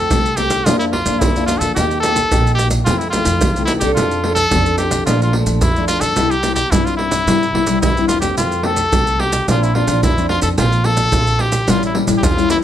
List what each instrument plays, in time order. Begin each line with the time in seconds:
Already playing: trumpet A4
0.11 upright bass C2, nylon-string guitar C3 A3 C4 G4, pandeiro, maracas, surdo
0.26 pandeiro, maracas
0.36 nylon-string guitar A3 C4 G4, trumpet G4, pandeiro, maracas
0.50 pandeiro, maracas, surdo
0.65 upright bass F2, nylon-string guitar F3 A#3 D4 F4, trumpet F4, pandeiro, maracas, surdo
0.79 trumpet E4, pandeiro, maracas
0.92 trumpet F4, pandeiro, surdo
1.06 upright bass F2, nylon-string guitar A#3 D4 F4, pandeiro, maracas, surdo
1.19 upright bass F2, nylon-string guitar F3, trumpet E4, pandeiro, maracas, surdo
1.36 nylon-string guitar A#3 D4 F4, pandeiro, maracas
1.46 trumpet F4, pandeiro, maracas
1.58 upright bass E2, trumpet A4, pandeiro, maracas, surdo
1.74 upright bass D#2, nylon-string guitar D#3 A#3 D#4 G4, trumpet G4, pandeiro, maracas, surdo
1.91 pandeiro, maracas
2.00 nylon-string guitar A#3, trumpet A4, pandeiro, maracas
2.05 nylon-string guitar D#4 G4
2.16 pandeiro, maracas, surdo
2.31 upright bass A#1, nylon-string guitar A#2 A#3 D#4 G4, pandeiro, maracas, surdo
2.47 pandeiro, maracas
2.55 trumpet G4, pandeiro, maracas
2.71 pandeiro, maracas, surdo
2.85 nylon-string guitar F2 E3 A3 C4, upright bass F2, trumpet F4, pandeiro, maracas, surdo
2.98 trumpet E4, pandeiro, maracas
3.10 trumpet F4, pandeiro, maracas, surdo
3.15 nylon-string guitar E3 A3 C4
3.25 upright bass F2, pandeiro, maracas, surdo
3.41 upright bass C2, nylon-string guitar C3, pandeiro, maracas, surdo
3.56 nylon-string guitar E3 A3 C4, pandeiro, maracas
3.65 trumpet E4, pandeiro, maracas
3.79 upright bass C2, nylon-string guitar C4 D4 A4, trumpet G4, pandeiro, maracas, surdo
3.95 upright bass F2, nylon-string guitar F3, trumpet F4, pandeiro, maracas, surdo
4.11 pandeiro, maracas
4.23 nylon-string guitar C4 D4 A4, pandeiro
4.35 trumpet A4, pandeiro, maracas, surdo
4.51 upright bass F2, nylon-string guitar F3 C4 D4 A4, pandeiro, maracas, surdo
4.66 pandeiro, maracas
4.78 trumpet G4, pandeiro, maracas
4.91 pandeiro, maracas, surdo
5.06 upright bass A#1, nylon-string guitar A#2 F3 A3 D4, trumpet F4, pandeiro, maracas, surdo
5.22 trumpet F4, pandeiro, maracas
5.33 nylon-string guitar F3 A3 D4, pandeiro
5.46 upright bass A#1, pandeiro, maracas, surdo
5.61 nylon-string guitar F2, upright bass F2, trumpet E4, pandeiro, maracas, surdo
5.76 nylon-string guitar F3 A3 D4, pandeiro, maracas
5.88 trumpet F4, pandeiro, maracas
6.01 upright bass G2, trumpet A4, pandeiro, maracas, surdo
6.16 upright bass C2, nylon-string guitar C3 G3 C4 E4, pandeiro, maracas, surdo
6.31 trumpet G4, pandeiro, maracas
6.42 nylon-string guitar G3 C4 E4, pandeiro, maracas
6.54 trumpet G4, pandeiro, maracas, surdo
6.71 upright bass G2, nylon-string guitar G2 G3 C4 E4, trumpet E4, pandeiro, maracas, surdo
6.85 trumpet F4, pandeiro, maracas
6.97 trumpet E4, pandeiro
7.11 pandeiro, maracas, surdo
7.27 upright bass G2, nylon-string guitar C3 G3 C4 E4, pandeiro, maracas, surdo
7.43 pandeiro, maracas
7.53 upright bass C2, nylon-string guitar G3 C4 E4, pandeiro, surdo
7.67 nylon-string guitar G3 C4 E4, pandeiro, maracas, surdo
7.81 upright bass D2, nylon-string guitar G2, trumpet E4, pandeiro, maracas, surdo
7.97 nylon-string guitar G3 C4 E4, pandeiro, maracas
8.08 upright bass E2, trumpet F4, pandeiro, maracas
8.20 nylon-string guitar A3 C4 G4, trumpet G4, pandeiro, maracas, surdo
8.38 upright bass F2, nylon-string guitar F3, trumpet F4, pandeiro, maracas, surdo
8.52 pandeiro, maracas
8.63 nylon-string guitar A3 C4 G4, trumpet A4, pandeiro
8.76 pandeiro, maracas, surdo
8.92 upright bass C2, nylon-string guitar C3 A3 C4 G4, pandeiro, maracas, surdo
9.07 pandeiro, maracas
9.19 trumpet G4, pandeiro
9.33 pandeiro, maracas, surdo
9.48 upright bass A#1, nylon-string guitar A#2 F3 C4 D4, trumpet F4, pandeiro, maracas, surdo
9.63 trumpet E4, pandeiro, maracas
9.75 nylon-string guitar F3 C4 D4, trumpet F4, pandeiro, surdo
9.87 upright bass A#1, nylon-string guitar F3 C4 D4, pandeiro, maracas, surdo
10.03 upright bass F2, nylon-string guitar F3, trumpet E4, pandeiro, maracas, surdo
10.17 nylon-string guitar F3 C4 D4, pandeiro, maracas
10.29 trumpet F4, pandeiro
10.42 upright bass F2, trumpet A4, pandeiro, maracas, surdo
10.58 upright bass A#1, nylon-string guitar A#2 F3 C4 F4, trumpet F4, pandeiro, maracas, surdo
10.72 pandeiro, maracas
10.84 nylon-string guitar F3 C4 F4, trumpet A4, pandeiro
10.97 pandeiro, maracas, surdo
11.12 upright bass A#1, nylon-string guitar F3 C4 F4, pandeiro, maracas, surdo
11.27 pandeiro, maracas
11.39 trumpet G4, pandeiro
11.52 pandeiro, maracas, surdo
11.68 upright bass A1, nylon-string guitar A2 G3 C#4 E4, trumpet F4, pandeiro, maracas, surdo
11.83 trumpet E4, pandeiro, maracas
11.94 nylon-string guitar G3 C#4 E4, pandeiro
12.07 upright bass A1, nylon-string guitar G3 C#4 E4, pandeiro, maracas, surdo
12.17 trumpet G4
12.23 upright bass E2, nylon-string guitar E3, trumpet F4, pandeiro, maracas, surdo
12.36 nylon-string guitar G3 C#4 E4, pandeiro, maracas
12.50 trumpet E4, pandeiro, maracas